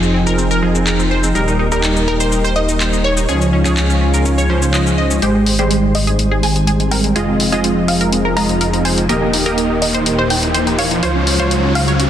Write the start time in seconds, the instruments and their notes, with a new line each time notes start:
Already playing: detuned saw bass F1, supersaw synth F3 D#4 G#4, analog synth pad F3 C4 D#4 G#4 G5, synth pluck D#5
0.02 synth pluck C4, shaker
0.14 synth pluck C4
0.27 synth pluck A#4, shaker
0.38 synth pluck C4, shaker
0.51 synth pluck A#4, shaker
0.62 supersaw synth F3 D#4 G#4, synth pluck C4
0.75 synth pluck C4, shaker
0.87 synth pluck A#4, clap, shaker
0.99 synth pluck C4, shaker
1.11 synth pluck C5
1.23 synth pluck C4, shaker
1.35 detuned saw bass D#1, supersaw synth G3 D#4 A#4, analog synth pad A#3 D#4 G4, synth pluck A#4, shaker
1.48 synth pluck D#4, shaker
1.59 synth pluck D#4
1.72 supersaw synth G3 D#4 A#4, synth pluck A#4, shaker
1.83 synth pluck D#4, clap, shaker
1.96 synth pluck D#4, shaker
2.08 synth pluck D#4 A#4
2.20 synth pluck C5, shaker
2.32 synth pluck D#4, shaker
2.44 synth pluck C5, shaker
2.56 synth pluck D#4 D#5
2.69 synth pluck D#4, shaker
2.80 synth pluck C5, clap, shaker
2.93 synth pluck D#4, shaker
3.04 synth pluck C#5
3.17 synth pluck D#4, shaker
3.29 detuned saw bass C#2, analog synth pad C#3 G#3 F4 G#4, supersaw synth F3 C#4 C#5, synth pluck G#4, shaker
3.41 synth pluck C#4, shaker
3.53 synth pluck C#4
3.65 supersaw synth F3 C#4 C#5, synth pluck G#4, clap, shaker
3.77 synth pluck C#4, clap, shaker
3.90 synth pluck C#4, shaker
4.01 synth pluck C#4
4.14 synth pluck A#4, shaker
4.25 synth pluck C#4, shaker
4.38 synth pluck C#5, shaker
4.50 supersaw synth F3 C#4 C5, synth pluck C#4
4.62 synth pluck C#4, shaker
4.74 synth pluck D#5, clap, shaker
4.86 synth pluck C#4, shaker
4.98 synth pluck D#5
5.11 synth pluck C#4, shaker
5.22 detuned saw bass G#1, analog synth pad D#3 C4, supersaw synth G#3 G4 C5, synth pluck G4, closed hi-hat, riser
5.35 synth pluck G#3
5.46 synth pluck G#3, open hi-hat
5.59 supersaw synth G3 G#3 C5, synth pluck G4, closed hi-hat
5.71 synth pluck G#3, closed hi-hat
5.83 synth pluck G#3
5.95 synth pluck G#3 D#5, open hi-hat
6.07 synth pluck G#4, closed hi-hat
6.19 synth pluck G#3, closed hi-hat
6.31 synth pluck G#4
6.43 synth pluck G#3 G#5, open hi-hat
6.56 synth pluck G#3, closed hi-hat
6.67 synth pluck G#4, closed hi-hat
6.80 synth pluck G#3, closed hi-hat
6.91 synth pluck A#4 G5, open hi-hat
7.04 synth pluck G#3, closed hi-hat
7.16 detuned saw bass F1, analog synth pad F3 D#4 G#4, supersaw synth G#3 F4 D#5, synth pluck G#4, closed hi-hat
7.28 synth pluck C4
7.40 synth pluck C4, open hi-hat
7.52 supersaw synth G#3 F4 D#5, synth pluck G#4, closed hi-hat
7.64 synth pluck C4, closed hi-hat
7.77 synth pluck C4
7.88 synth pluck C4 F5, open hi-hat
8.01 synth pluck A#4, closed hi-hat
8.12 synth pluck C4, closed hi-hat
8.25 synth pluck A#4
8.37 supersaw synth G#3 F4 D#5, synth pluck C4 A#5, open hi-hat
8.49 synth pluck C4, closed hi-hat
8.61 synth pluck A#4, closed hi-hat
8.73 synth pluck C4, closed hi-hat
8.85 synth pluck C5 G#5, open hi-hat
8.98 synth pluck C4, closed hi-hat
9.09 detuned saw bass D#1, analog synth pad A#3 G4, supersaw synth A#3 G4 D#5, synth pluck A#4, closed hi-hat
9.22 synth pluck D#4
9.33 synth pluck D#4, open hi-hat
9.46 supersaw synth A#3 G4 D#5, synth pluck A#4, closed hi-hat
9.58 synth pluck D#4, closed hi-hat
9.70 synth pluck D#4
9.82 synth pluck D#4 D#5, open hi-hat
9.94 synth pluck C5, closed hi-hat
10.06 synth pluck D#4, closed hi-hat
10.19 synth pluck C5
10.30 synth pluck D#4 G5, open hi-hat
10.43 synth pluck D#4, closed hi-hat
10.54 synth pluck C5, closed hi-hat
10.67 synth pluck D#4, closed hi-hat
10.79 synth pluck C#5 F5, open hi-hat
10.91 synth pluck D#4, closed hi-hat
11.03 detuned saw bass C#2, analog synth pad C#3 G#3 F4, supersaw synth F4 C5 C#5, synth pluck C5, closed hi-hat
11.15 synth pluck C#4
11.27 synth pluck C#4, open hi-hat
11.39 supersaw synth F4 C5 C#5, synth pluck C5, closed hi-hat
11.51 synth pluck C#4, closed hi-hat
11.64 synth pluck C#4
11.75 synth pluck C#4 F5, open hi-hat
11.88 synth pluck C#5, closed hi-hat
12.00 synth pluck C#4, closed hi-hat